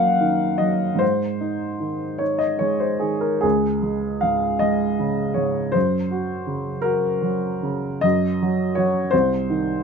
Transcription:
Already playing: F#2 F#3 A#3 A#4 F5 F#5
0.21 D#3
0.58 F#3 D#5
0.95 G#2 C5
1.41 D#4
1.80 D#3
2.18 D#4 C#5
2.38 D#5
2.59 G#3 C#5
2.80 C5
3.00 D#3 G#4
3.21 A#4
3.41 C#2 G#4
3.83 G#3
4.21 G#2 F5
4.59 G#3 D#5
4.99 C#3
5.34 G#2 C#5
5.72 F#2 C5
6.11 F#4
6.47 C#3
6.82 F#4 A#4
7.22 F#3
7.63 C#3
8.01 F#2 D#5
8.42 F#3
8.75 F#3 F#4 C#5
9.11 C2 C5
9.50 D#3

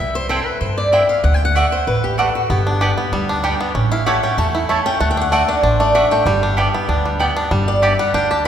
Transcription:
0.00 C2 E5
0.15 C5
0.29 C4 E4 A4 C5 G5
0.46 B4
0.61 G2 C5
0.78 D5
0.92 C4 E4 C5 E5 G5
1.09 F5
1.24 D2 F#5
1.34 G5
1.45 F#5
1.55 A3 F#4 D5 E5 F#5
1.72 C5
1.87 A1 B4
2.04 G4
2.18 A3 F#4 A4 D5 F#5
2.35 F#4
2.50 G1 B3 G4
2.67 D4
2.81 B3 G4 D5 G5
2.98 B3
3.12 D2 G3
3.29 D4
3.43 G3 B3 G4 D5 G5
3.60 B3
3.75 A1 C#4
3.91 E4 F5
4.06 A3 E4 G4 C#5 F#5 A5
4.23 C#4 G5
4.38 E2 A3 A5
4.55 E4
4.69 A3 E4 C#5 A5
4.86 C#4 G5
5.00 D2 A3 F#5
5.11 G5
5.17 D4
5.21 F#5
5.32 A3 F#4 D5 E5 F#5
5.49 D4 D5
5.63 A1 D4 C5
5.80 A3 D5
5.94 A3 D4 F#4 D5 E5 F#5
6.11 A3 G5
6.26 G1 G3
6.43 D4
6.57 G3 B3 G4 D5 G5
6.74 B3
6.88 D2 D4
7.05 G3
7.19 B3 G4 D5 G5
7.37 D4
7.51 G1 G3
7.68 D5
7.82 B3 G4 D5 E5 A5
7.99 G3 F#5
8.14 D2 D4 G5
8.31 G4 A5

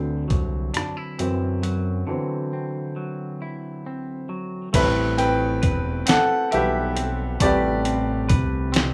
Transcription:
Already playing: D2 D3 E3 F#3 A3 C4
0.28 C2 F#3, kick, closed hi-hat
0.74 F#2 D4, cross-stick, closed hi-hat
0.97 E4
1.19 F#2 E3 F#3 C4, closed hi-hat
1.63 F#3, closed hi-hat
2.07 D3 E3 F#3 C4
2.53 C4
2.96 F#3
3.42 E4
3.86 C4
4.29 F#3
4.73 A1 G3 A3 C4 E4 B4, kick, closed hi-hat, crash
5.18 C4 B4 G5, closed hi-hat
5.62 E1 B4, kick, closed hi-hat
6.06 B1 C4 A4 F#5, snare, closed hi-hat
6.51 B1 E3 G3 G4 B4 E5, closed hi-hat
6.96 C4, closed hi-hat
7.40 A1 C3 G3 A3 G4 B4 D5, kick, closed hi-hat
7.85 C4, closed hi-hat
8.29 C2 B4, kick, closed hi-hat
8.72 C4, closed hi-hat
8.76 snare

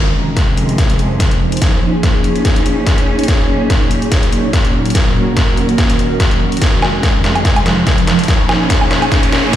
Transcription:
Already playing: F2 C3 F3 G#3 A#4
0.13 C5
0.37 D#4, kick, snare, closed hi-hat
0.57 closed hi-hat
0.69 G#4, closed hi-hat
0.78 kick, snare, closed hi-hat
0.90 closed hi-hat
0.99 closed hi-hat
1.20 kick, snare, closed hi-hat
1.31 closed hi-hat
1.52 closed hi-hat
1.57 closed hi-hat
1.62 A#2 F3 A#3 C#4, kick, snare, closed hi-hat
2.00 C#5, kick, snare, closed hi-hat
2.24 closed hi-hat
2.36 closed hi-hat
2.45 kick, snare, closed hi-hat
2.56 closed hi-hat
2.66 closed hi-hat
2.87 kick, snare, closed hi-hat
2.98 closed hi-hat
3.19 closed hi-hat
3.23 closed hi-hat
3.28 A#2 F#3, kick, snare, closed hi-hat
3.44 C#4
3.70 kick, snare, closed hi-hat
3.91 closed hi-hat
4.02 F#4 A#4, closed hi-hat
4.12 kick, snare, closed hi-hat
4.23 closed hi-hat
4.32 closed hi-hat
4.53 kick, snare, closed hi-hat
4.65 closed hi-hat
4.86 closed hi-hat
4.90 closed hi-hat
4.95 D#2 D#3, kick, snare, closed hi-hat
5.37 kick, snare, closed hi-hat
5.57 closed hi-hat
5.69 closed hi-hat
5.78 kick, snare, closed hi-hat
5.90 closed hi-hat
5.99 closed hi-hat
6.20 kick, snare, closed hi-hat
6.31 closed hi-hat
6.52 closed hi-hat
6.57 closed hi-hat
6.62 F2 C3 F3 G#3, kick, snare, closed hi-hat, riser
6.79 D#4, snare, low woodblock
7.03 kick, snare, closed hi-hat
7.24 snare, closed hi-hat
7.35 G#4, closed hi-hat, low woodblock
7.45 kick, snare, closed hi-hat
7.56 closed hi-hat, low woodblock
7.66 snare, closed hi-hat
7.87 kick, snare, closed hi-hat
7.98 closed hi-hat
8.07 snare, open hi-hat
8.19 closed hi-hat
8.24 closed hi-hat
8.28 A#2 F3 A#3 C#4, kick, snare, closed hi-hat
8.49 snare, low woodblock
8.70 kick, snare, closed hi-hat
8.81 low woodblock
8.91 snare, closed hi-hat
9.02 C#5, closed hi-hat, low woodblock
9.12 kick, snare, closed hi-hat
9.23 closed hi-hat
9.32 snare, closed hi-hat

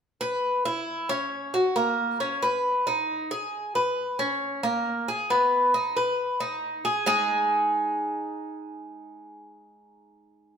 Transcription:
0.21 B4
0.65 E4
1.09 C#4
1.54 F#4
1.76 A#3
2.20 C#4
2.42 B4
2.87 D#4
3.31 G#4
3.75 B4
4.19 C#4
4.63 A#3
5.08 G#4
5.30 B3
5.74 D#4
5.97 B4
6.40 D#4
6.85 G#4
7.06 G#3 D#4 G#4

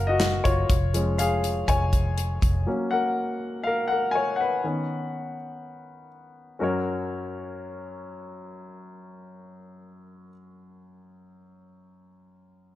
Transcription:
Already playing: F#1 F#3 A#3 C#4 A#4 F5 F#5
0.07 F#4 D#5
0.20 snare, clap, closed hi-hat
0.44 F#1 F4 C#5, kick, closed hi-hat
0.70 F1, kick, closed hi-hat
0.94 F3 G#3 C#4, closed hi-hat
1.18 G#4 F5, closed hi-hat
1.44 closed hi-hat
1.68 F1 C#5 G#5, kick, closed hi-hat
1.93 kick, closed hi-hat
2.18 closed hi-hat
2.42 F1, kick, closed hi-hat
2.66 F#3 A#3 C#4
2.91 A#4 F#5
3.63 A#4 F5
3.88 A#4 F#5
4.11 G#5
4.15 C#5
4.36 F#5
4.41 B4
4.64 D#3 B3 C#4
6.59 F#2 C#4 F#4 A#4 C#5

